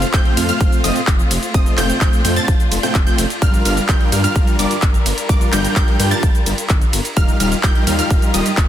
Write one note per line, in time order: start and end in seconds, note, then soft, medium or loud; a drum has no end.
0.00 3.38 A3 medium
0.00 1.52 C4 medium
0.00 7.13 F4 medium
0.00 closed hi-hat medium
0.00 shaker soft
0.13 0.21 F1 medium
0.13 0.34 A3 loud
0.13 0.34 C4 medium
0.13 0.34 F4 loud
0.13 0.34 C5 medium
0.13 0.34 G5 loud
0.13 0.34 G6 loud
0.13 kick loud
0.13 clap loud
0.13 closed hi-hat medium
0.13 ride medium
0.13 shaker soft
0.25 closed hi-hat soft
0.37 0.51 F2 loud
0.37 0.46 A3 medium
0.37 0.46 C4 medium
0.37 0.46 F4 medium
0.37 0.46 C5 medium
0.37 0.46 F5 medium
0.37 0.46 F6 medium
0.37 open hi-hat loud
0.37 ride medium
0.37 shaker medium
0.49 0.81 A3 medium
0.49 0.81 C4 medium
0.49 0.81 F4 medium
0.49 0.81 C5 medium
0.49 0.81 F5 medium
0.49 0.81 F6 loud
0.49 closed hi-hat medium
0.49 shaker soft
0.61 0.68 F1 loud
0.61 kick loud
0.61 closed hi-hat soft
0.61 ride medium
0.61 shaker soft
0.72 closed hi-hat soft
0.72 shaker soft
0.84 0.91 F1 medium
0.84 1.01 A3 medium
0.84 1.01 C4 medium
0.84 1.01 F4 medium
0.84 1.01 C5 medium
0.84 1.01 D#5 medium
0.84 1.01 D#6 medium
0.84 open hi-hat loud
0.84 ride medium
0.84 shaker medium
0.96 closed hi-hat medium
0.96 shaker soft
1.07 1.22 F1 loud
1.07 kick loud
1.07 clap loud
1.07 closed hi-hat medium
1.07 ride medium
1.07 shaker soft
1.19 closed hi-hat soft
1.19 shaker soft
1.31 1.38 F1 medium
1.31 open hi-hat loud
1.31 ride medium
1.31 shaker medium
1.43 closed hi-hat soft
1.43 shaker soft
1.54 1.69 F1 loud
1.54 1.74 A3 medium
1.54 1.74 C4 medium
1.54 3.40 D4 medium
1.54 1.74 F4 medium
1.54 1.74 C5 medium
1.54 1.74 D#5 medium
1.54 1.74 D#6 medium
1.54 kick loud
1.54 closed hi-hat medium
1.54 ride medium
1.54 shaker soft
1.66 closed hi-hat soft
1.66 shaker soft
1.78 1.92 F1 loud
1.78 1.98 A3 loud
1.78 1.98 C4 medium
1.78 1.98 F4 medium
1.78 1.98 C5 medium
1.78 1.98 G5 loud
1.78 1.98 G6 loud
1.78 clap medium
1.78 open hi-hat loud
1.78 ride medium
1.78 shaker medium
1.90 closed hi-hat medium
1.90 shaker soft
2.01 2.08 F1 medium
2.01 2.21 C4 medium
2.01 2.21 C5 medium
2.01 2.21 G6 loud
2.01 kick loud
2.01 clap loud
2.01 closed hi-hat medium
2.01 ride medium
2.01 shaker soft
2.13 closed hi-hat soft
2.13 shaker soft
2.25 2.39 F2 loud
2.25 2.35 A3 medium
2.25 2.35 C4 medium
2.25 2.35 F4 medium
2.25 2.35 C5 medium
2.25 2.35 G5 medium
2.25 2.35 G6 medium
2.25 open hi-hat loud
2.25 ride medium
2.25 shaker medium
2.36 2.53 A3 loud
2.36 2.53 C4 medium
2.36 2.53 F4 medium
2.36 2.53 C5 medium
2.36 2.53 A5 loud
2.36 2.53 A6 loud
2.36 closed hi-hat soft
2.36 shaker soft
2.48 2.55 F1 loud
2.48 kick loud
2.48 closed hi-hat soft
2.48 ride medium
2.48 shaker soft
2.60 closed hi-hat soft
2.60 shaker soft
2.71 2.79 F1 medium
2.71 open hi-hat loud
2.71 ride medium
2.71 shaker medium
2.83 3.00 A3 medium
2.83 3.00 C4 medium
2.83 3.00 F4 medium
2.83 3.00 C5 medium
2.83 3.00 G5 medium
2.83 3.00 G6 medium
2.83 closed hi-hat medium
2.83 shaker soft
2.95 3.09 F1 loud
2.95 kick loud
2.95 clap loud
2.95 closed hi-hat soft
2.95 ride medium
2.95 shaker soft
3.07 3.23 A3 medium
3.07 3.23 C4 medium
3.07 3.23 F4 medium
3.07 3.23 C5 medium
3.07 3.23 G5 medium
3.07 3.23 G6 loud
3.07 closed hi-hat soft
3.07 shaker soft
3.18 3.25 F1 medium
3.18 open hi-hat loud
3.18 ride medium
3.18 shaker medium
3.30 closed hi-hat medium
3.30 shaker soft
3.42 3.56 G1 loud
3.42 3.62 G3 loud
3.42 7.13 G3 medium
3.42 3.62 D4 medium
3.42 7.13 D4 medium
3.42 3.62 F4 medium
3.42 3.62 A#4 medium
3.42 7.13 A#4 medium
3.42 3.62 F5 loud
3.42 3.62 F6 loud
3.42 kick loud
3.42 closed hi-hat medium
3.42 ride medium
3.42 shaker soft
3.54 closed hi-hat soft
3.54 shaker soft
3.65 3.80 G1 loud
3.65 3.82 G3 medium
3.65 3.82 D4 medium
3.65 3.82 F4 medium
3.65 3.82 A#4 medium
3.65 3.82 F5 loud
3.65 3.82 F6 medium
3.65 open hi-hat loud
3.65 ride medium
3.65 shaker medium
3.77 closed hi-hat medium
3.77 shaker soft
3.89 3.96 G1 medium
3.89 4.09 G3 loud
3.89 4.09 D4 medium
3.89 4.09 F4 medium
3.89 4.09 A#4 medium
3.89 4.09 G6 loud
3.89 kick loud
3.89 clap loud
3.89 closed hi-hat medium
3.89 ride medium
3.89 shaker soft
4.01 closed hi-hat soft
4.12 4.26 G2 loud
4.12 4.21 G3 medium
4.12 4.21 D4 medium
4.12 4.21 F4 medium
4.12 4.21 A#4 medium
4.12 4.21 F5 medium
4.12 4.21 F6 medium
4.12 open hi-hat loud
4.12 ride medium
4.12 shaker medium
4.24 4.56 G3 medium
4.24 4.56 D4 medium
4.24 4.56 F4 medium
4.24 4.56 A#4 medium
4.24 4.56 F5 loud
4.24 4.56 F6 loud
4.24 closed hi-hat soft
4.24 shaker soft
4.36 4.43 G1 loud
4.36 kick loud
4.36 closed hi-hat soft
4.36 ride medium
4.36 shaker soft
4.47 closed hi-hat soft
4.47 shaker soft
4.59 4.66 G1 medium
4.59 4.76 G3 medium
4.59 4.76 D4 medium
4.59 4.76 F4 medium
4.59 4.76 A#4 medium
4.59 4.76 D5 medium
4.59 4.76 D6 medium
4.59 open hi-hat loud
4.59 ride medium
4.59 shaker medium
4.71 closed hi-hat medium
4.71 shaker soft
4.82 4.97 G1 loud
4.82 kick loud
4.82 clap loud
4.82 closed hi-hat soft
4.82 ride medium
4.82 shaker soft
4.94 closed hi-hat soft
4.94 shaker soft
5.06 5.13 G1 medium
5.06 open hi-hat loud
5.06 ride medium
5.06 shaker medium
5.18 closed hi-hat medium
5.18 shaker soft
5.29 5.44 G1 loud
5.29 5.49 G3 medium
5.29 5.49 D4 medium
5.29 5.49 F4 medium
5.29 5.49 A#4 medium
5.29 5.49 D5 loud
5.29 5.49 D6 medium
5.29 kick loud
5.29 closed hi-hat medium
5.29 ride medium
5.29 shaker soft
5.41 closed hi-hat soft
5.41 shaker soft
5.52 5.67 G1 loud
5.52 5.73 G3 loud
5.52 5.73 D4 loud
5.52 5.73 F4 medium
5.52 5.73 A#4 medium
5.52 5.73 G5 loud
5.52 5.73 G6 loud
5.52 clap medium
5.52 open hi-hat loud
5.52 ride medium
5.52 shaker medium
5.65 closed hi-hat medium
5.65 shaker soft
5.76 5.83 G1 medium
5.76 5.96 G3 loud
5.76 5.96 G5 loud
5.76 5.96 G6 loud
5.76 kick loud
5.76 clap loud
5.76 closed hi-hat medium
5.76 ride medium
5.76 shaker soft
5.88 closed hi-hat soft
5.99 6.14 G2 loud
5.99 6.10 G3 medium
5.99 6.10 D4 medium
5.99 6.10 F4 medium
5.99 6.10 A#4 medium
5.99 6.10 G5 medium
5.99 6.09 G6 medium
5.99 open hi-hat loud
5.99 ride medium
5.99 shaker medium
6.11 6.28 G3 loud
6.11 6.28 D4 medium
6.11 6.28 F4 medium
6.11 6.28 A#4 medium
6.11 6.28 A5 loud
6.11 6.28 A6 loud
6.11 closed hi-hat medium
6.11 shaker soft
6.23 6.30 G1 loud
6.23 kick loud
6.23 closed hi-hat medium
6.23 ride medium
6.23 shaker soft
6.35 closed hi-hat soft
6.35 shaker soft
6.46 6.54 G1 medium
6.46 open hi-hat loud
6.46 ride medium
6.46 shaker medium
6.58 closed hi-hat medium
6.58 shaker soft
6.69 6.84 G1 loud
6.69 kick loud
6.69 clap loud
6.69 closed hi-hat medium
6.69 ride medium
6.69 shaker soft
6.82 closed hi-hat soft
6.82 shaker soft
6.93 7.00 G1 medium
6.93 open hi-hat loud
6.93 ride medium
6.93 shaker medium
7.05 closed hi-hat medium
7.05 shaker soft
7.17 7.31 D#1 loud
7.17 8.68 D#3 medium
7.17 7.37 G3 loud
7.17 8.68 D#4 medium
7.17 7.37 D#4 medium
7.17 7.37 F4 medium
7.17 8.68 F4 medium
7.17 8.68 G4 medium
7.17 7.37 A#4 medium
7.17 7.37 F5 loud
7.17 7.37 F6 loud
7.17 kick loud
7.17 closed hi-hat medium
7.17 ride medium
7.17 shaker soft
7.28 closed hi-hat soft
7.28 shaker soft
7.40 7.54 D#1 loud
7.40 7.57 G3 medium
7.40 7.57 D#4 medium
7.40 7.57 F4 medium
7.40 7.57 A#4 medium
7.40 7.57 F5 loud
7.40 7.57 F6 loud
7.40 open hi-hat loud
7.40 ride medium
7.40 shaker medium
7.52 closed hi-hat medium
7.52 shaker soft
7.63 7.71 D#1 medium
7.63 7.84 G3 loud
7.63 7.84 D#4 medium
7.63 7.84 F4 loud
7.63 7.84 A#4 medium
7.63 7.84 G5 loud
7.63 7.84 G6 loud
7.63 kick loud
7.63 clap loud
7.63 closed hi-hat medium
7.63 ride medium
7.63 shaker soft
7.75 closed hi-hat soft
7.87 8.01 D#2 loud
7.87 7.96 G3 medium
7.87 7.96 D#4 medium
7.87 7.96 F4 medium
7.87 7.96 A#4 medium
7.87 7.96 F5 medium
7.87 7.96 F6 medium
7.87 open hi-hat loud
7.87 ride medium
7.87 shaker medium
7.99 8.31 G3 medium
7.99 8.31 D#4 medium
7.99 8.31 F4 medium
7.99 8.31 A#4 medium
7.99 8.31 F5 loud
7.99 8.31 F6 loud
7.99 closed hi-hat soft
7.99 shaker soft
8.10 8.18 D#1 loud
8.10 kick loud
8.10 closed hi-hat medium
8.10 ride medium
8.10 shaker soft
8.22 closed hi-hat soft
8.22 shaker soft
8.34 8.41 D#1 medium
8.34 8.51 G3 medium
8.34 8.51 D#4 medium
8.34 8.51 F4 medium
8.34 8.51 A#4 medium
8.34 8.51 D#5 medium
8.34 8.51 D#6 medium
8.34 open hi-hat loud
8.34 ride medium
8.34 shaker medium
8.46 closed hi-hat medium
8.46 shaker soft
8.57 8.68 D#1 loud
8.57 kick loud
8.57 clap loud
8.57 closed hi-hat medium
8.57 ride medium
8.57 shaker soft